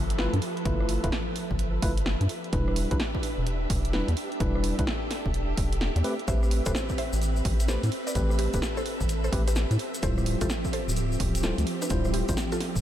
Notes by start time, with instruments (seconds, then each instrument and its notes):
Already playing: analog synth bass G1, string machine F3 A4 B4 E5
0.10 closed hi-hat
0.18 tine electric piano A3 E4 F4 B4, snare
0.33 analog synth bass G2, closed hi-hat
0.42 open hi-hat
0.57 closed hi-hat
0.65 analog synth bass G1, tine electric piano A3 E4 F4 B4, kick, closed hi-hat
0.80 cross-stick
0.89 open hi-hat
1.04 analog synth bass D1, tine electric piano A3 E4 F4 B4, kick, cross-stick, closed hi-hat
1.12 snare
1.36 open hi-hat
1.51 analog synth bass G1, kick
1.59 closed hi-hat
1.82 analog synth bass G1, tine electric piano A3 E4 F4 B4, kick, open hi-hat
1.98 closed hi-hat
2.06 snare
2.21 analog synth bass G2, closed hi-hat
2.29 string machine D4 G4 B4, open hi-hat
2.44 closed hi-hat
2.53 analog synth bass E1, tine electric piano G3 D4 E4 B4, kick, closed hi-hat
2.68 cross-stick
2.76 open hi-hat
2.91 analog synth bass B1, tine electric piano G3 D4 E4 B4, kick, cross-stick, closed hi-hat
3.00 snare
3.15 kick
3.23 open hi-hat
3.38 analog synth bass E1
3.47 closed hi-hat
3.70 analog synth bass E1, kick, open hi-hat
3.85 closed hi-hat
3.93 tine electric piano G3 D4 E4 B4, snare
4.08 analog synth bass E2, closed hi-hat
4.17 string machine A4, open hi-hat
4.32 closed hi-hat
4.40 analog synth bass E1, tine electric piano G3 D4 E4 B4, kick, closed hi-hat
4.55 cross-stick
4.64 open hi-hat
4.79 analog synth bass B1, tine electric piano G3 D4 E4 B4, kick, cross-stick, closed hi-hat
4.87 snare
5.11 snare, open hi-hat
5.26 analog synth bass E1, kick
5.34 closed hi-hat
5.57 analog synth bass E1, kick, open hi-hat
5.73 closed hi-hat
5.81 snare
5.96 analog synth bass E2, closed hi-hat
6.04 tine electric piano A3 C4 G4 B4, string machine C4 B4, open hi-hat
6.19 closed hi-hat
6.28 analog synth bass A1, tine electric piano A3 C4 G4 B4, synth pluck C5 E5, kick, closed hi-hat, shaker
6.43 cross-stick, shaker
6.51 open hi-hat
6.66 analog synth bass E1, tine electric piano A3 C4 G4 B4, synth pluck A4 C5, kick, cross-stick, closed hi-hat, shaker
6.75 snare, shaker
6.89 kick, shaker
6.98 synth pluck C5 E5, open hi-hat
7.13 analog synth bass A1, shaker
7.22 closed hi-hat, shaker
7.36 shaker
7.45 analog synth bass A1, kick, open hi-hat
7.60 closed hi-hat, shaker
7.68 tine electric piano A3 C4 G4 B4, synth pluck A4 C5, snare, shaker
7.83 analog synth bass A2, closed hi-hat, shaker
7.92 string machine A4, open hi-hat
8.07 synth pluck B4 D5, closed hi-hat, shaker
8.15 analog synth bass A1, tine electric piano A3 C4 G4 B4, kick, closed hi-hat, shaker
8.30 cross-stick, shaker
8.39 synth pluck G4 B4, open hi-hat
8.53 analog synth bass E1, tine electric piano A3 C4 G4 B4, kick, cross-stick, closed hi-hat, shaker
8.62 snare, shaker
8.77 synth pluck A4 C5, shaker
8.86 open hi-hat
9.01 analog synth bass A1, kick, shaker
9.09 closed hi-hat, shaker
9.24 synth pluck A4 C5, shaker
9.32 analog synth bass A1, tine electric piano A3 C4 G4 B4, kick, open hi-hat
9.48 synth pluck G4 B4, closed hi-hat, shaker
9.56 snare, shaker
9.71 analog synth bass A2, closed hi-hat, shaker
9.79 string machine F3 C4 G4, open hi-hat
9.94 closed hi-hat, shaker
10.03 analog synth bass D1, tine electric piano G3 E4 F4 C5, synth pluck A4 C5, kick, closed hi-hat, shaker
10.18 cross-stick, shaker
10.26 open hi-hat
10.41 analog synth bass A1, tine electric piano G3 E4 F4 C5, synth pluck F4 A4, kick, cross-stick, closed hi-hat, shaker
10.49 snare, shaker
10.65 kick, shaker
10.73 synth pluck A4 C5, open hi-hat
10.88 analog synth bass D1, shaker
10.96 closed hi-hat, shaker
11.12 shaker
11.20 analog synth bass D1, kick, open hi-hat
11.35 closed hi-hat, shaker
11.43 tine electric piano G3 E4 F4 C5, synth pluck F4 A4, snare, shaker
11.58 analog synth bass D2, closed hi-hat, shaker
11.67 open hi-hat
11.82 synth pluck D4 B4, closed hi-hat, shaker
11.90 analog synth bass D1, tine electric piano G3 E4 F4 C5, kick, closed hi-hat, shaker
12.04 cross-stick, shaker
12.14 synth pluck E4 G4, open hi-hat
12.29 analog synth bass A1, tine electric piano G3 E4 F4 C5, kick, cross-stick, closed hi-hat, shaker
12.37 snare, shaker
12.52 synth pluck F4 A4, closed hi-hat, shaker
12.61 snare, open hi-hat
12.76 analog synth bass D1, kick, shaker